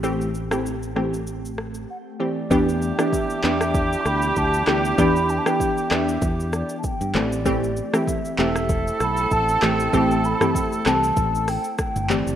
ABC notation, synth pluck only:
X:1
M:4/4
L:1/16
Q:"Swing 16ths" 1/4=97
K:Em
V:1 name="Synth pluck"
[E,A,CG]2 z [E,A,CG]3 [E,A,CG]2 z6 [E,A,CG]2 | [E,B,DG]2 z [E,B,DG]3 [E,B,DG]2 z6 [E,B,DG]2 | [E,B,DG]2 z [E,B,DG]3 [E,B,DG]2 z6 [E,A,CG]2 | [E,A,CG]2 z [E,A,CG]3 [E,A,CG]2 z6 [E,A,CG]2 |
[E,A,CG]2 z [E,A,CG]3 [E,A,CG]2 z6 [E,A,CG]2 |]